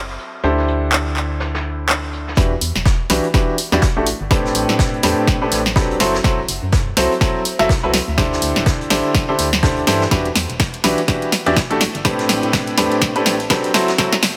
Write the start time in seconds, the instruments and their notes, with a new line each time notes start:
Already playing: fm bass F#1, grand piano F#3 C4 E4 F#4 A4 C5
0.19 closed hi-hat
0.43 fm bass D2, grand piano D3 D4 E4 G4 A4 C5, closed hi-hat
0.58 snare
0.68 closed hi-hat
0.92 clap, closed hi-hat
1.06 closed hi-hat
1.17 clap, closed hi-hat
1.40 snare, closed hi-hat
1.54 snare, closed hi-hat
1.89 snare, clap, closed hi-hat
2.13 closed hi-hat
2.27 snare
2.37 fm bass E2, grand piano E3 D4 E4 F#4 G4 B4, kick, snare, closed hi-hat
2.61 fm bass E2, closed hi-hat, open hi-hat
2.75 fm bass E1, snare
2.85 kick, snare, closed hi-hat
3.10 fm bass B1, grand piano E3 D4 E4 F#4 G4 B4, snare, closed hi-hat, open hi-hat
3.24 closed hi-hat
3.34 grand piano E3 D4 E4 F#4 G4 B4, kick, snare, closed hi-hat
3.58 closed hi-hat, open hi-hat
3.72 fm bass E2, grand piano E3 D4 E4 F#4 G4 D5, snare
3.82 kick, snare, closed hi-hat
3.96 fm bass A1, grand piano A3 D4 E4 F#4 G4 A4
4.06 closed hi-hat, open hi-hat
4.21 fm bass G1
4.31 grand piano A2 C4 D4 G4 A4 B4, kick, snare, closed hi-hat
4.45 snare
4.54 fm bass A1, closed hi-hat, open hi-hat
4.69 fm bass A2, snare
4.79 kick, snare, closed hi-hat
4.94 closed hi-hat
5.02 fm bass E2, grand piano A2 C4 D4 G4 A4 B4, snare, closed hi-hat, open hi-hat
5.27 kick, snare, closed hi-hat
5.42 grand piano A2 C4 D4 G4 A4 B4
5.52 fm bass A1, snare, closed hi-hat, open hi-hat
5.66 snare, closed hi-hat
5.76 grand piano F#3 C4 D4 G4 A4 B4, kick, snare, closed hi-hat
5.91 closed hi-hat
6.00 fm bass F#1, grand piano F#3 C4 E4 F#4 A4 C5, snare, closed hi-hat, open hi-hat
6.14 snare
6.24 fm bass F#1, grand piano F#3 C4 E4 F#4 A4 C5, kick, snare, closed hi-hat
6.48 fm bass F#1, closed hi-hat, open hi-hat
6.62 fm bass F#2
6.72 kick, snare, closed hi-hat
6.97 fm bass C2, grand piano F#3 C4 E4 F#4 A4 C5, snare, closed hi-hat, open hi-hat
7.12 closed hi-hat
7.21 grand piano F#3 C4 E4 F#4 A4 C5, kick, snare, closed hi-hat
7.45 closed hi-hat, open hi-hat
7.59 fm bass F#1, grand piano F#3 C4 E4 F#4 A4 E5, snare
7.69 kick, snare, closed hi-hat
7.83 fm bass C2, grand piano F#3 C4 E4 F#4 A4 B4
7.94 snare, closed hi-hat, open hi-hat
8.08 fm bass D2
8.18 grand piano D3 D4 E4 G4 A4 C5, kick, snare, closed hi-hat
8.33 snare
8.42 fm bass D2, closed hi-hat, open hi-hat
8.56 snare
8.66 kick, snare, closed hi-hat
8.81 closed hi-hat
8.90 fm bass A1, grand piano D3 D4 E4 G4 A4 C5, snare, closed hi-hat, open hi-hat
9.14 kick, snare, closed hi-hat
9.29 grand piano D3 D4 E4 G4 A4 C5
9.39 fm bass D2, snare, closed hi-hat, open hi-hat
9.53 snare, closed hi-hat
9.63 grand piano D3 D4 E4 G4 A4 C5, kick, snare, closed hi-hat
9.76 closed hi-hat
9.87 fm bass G2, grand piano E3 D4 E4 G4 A4 C5, snare, closed hi-hat, open hi-hat
10.01 snare
10.11 fm bass E2, grand piano E3 D4 E4 F#4 G4 B4, kick, snare, closed hi-hat
10.26 closed hi-hat
10.35 fm bass E2, snare, closed hi-hat, open hi-hat
10.50 fm bass E1, closed hi-hat
10.59 kick, snare, closed hi-hat
10.74 closed hi-hat
10.84 fm bass B1, grand piano E3 D4 E4 F#4 G4 B4, snare, closed hi-hat, open hi-hat
10.98 closed hi-hat
11.08 grand piano E3 D4 E4 F#4 G4 B4, kick, snare, closed hi-hat
11.22 closed hi-hat
11.32 snare, closed hi-hat, open hi-hat
11.46 fm bass E2, grand piano E3 D4 E4 F#4 G4 D5, closed hi-hat
11.56 kick, snare, closed hi-hat
11.70 fm bass A1, grand piano A3 D4 E4 F#4 G4 A4, closed hi-hat
11.80 snare, closed hi-hat, open hi-hat
11.95 fm bass G1, closed hi-hat
12.05 grand piano A2 C4 D4 G4 A4 B4, kick, snare, closed hi-hat
12.19 snare, closed hi-hat
12.29 fm bass A1, snare, closed hi-hat, open hi-hat
12.43 fm bass A2, closed hi-hat
12.53 kick, snare, closed hi-hat
12.67 closed hi-hat
12.77 fm bass E2, grand piano A2 C4 D4 G4 A4 B4, snare, closed hi-hat, open hi-hat
12.92 closed hi-hat
13.01 kick, snare, closed hi-hat
13.16 grand piano A2 C4 D4 G4 A4 B4, closed hi-hat
13.25 fm bass A1, snare, closed hi-hat, open hi-hat
13.40 closed hi-hat
13.50 grand piano F#3 C4 D4 G4 A4 B4, kick, snare, closed hi-hat
13.64 closed hi-hat
13.74 fm bass F#1, grand piano F#3 C4 E4 F#4 A4 C5, snare, closed hi-hat, open hi-hat
13.88 snare, closed hi-hat
13.98 fm bass F#1, grand piano F#3 C4 E4 F#4 A4 C5, kick, snare, closed hi-hat
14.13 snare, closed hi-hat
14.22 fm bass F#1, snare, closed hi-hat, open hi-hat